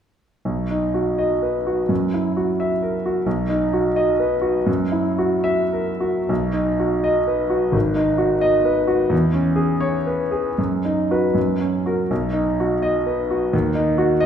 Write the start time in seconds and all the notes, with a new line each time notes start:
0.45 B1
0.71 D#4
0.94 F#4
1.18 D#5
1.42 B4
1.67 F#4
1.89 F#2
2.14 E4
2.37 F#4
2.60 E5
2.82 A#4
3.06 F#4
3.26 B1
3.49 D#4
3.73 F#4
3.96 D#5
4.20 B4
4.42 F#4
4.66 F#2
4.92 E4
5.19 F#4
5.44 E5
5.73 A#4
6.00 F#4
6.29 B1
6.53 D#4
6.79 F#4
7.04 D#5
7.27 B4
7.50 F#4
7.72 G#1
7.95 D#4
8.18 F#4
8.41 D#5
8.65 B4
8.88 F#4
9.10 E2
9.33 C#4
9.56 G#4
9.81 C#5
10.07 B4
10.31 G#4
10.58 F#2
10.85 D#4
11.11 F#4 B4
11.34 F#2
11.61 C#4
11.86 F#4 A#4
12.11 B1
12.33 D#4
12.60 F#4
12.82 D#5
13.06 B4
13.31 F#4
13.53 D#2
13.75 D#4
13.98 F#4
14.20 D#5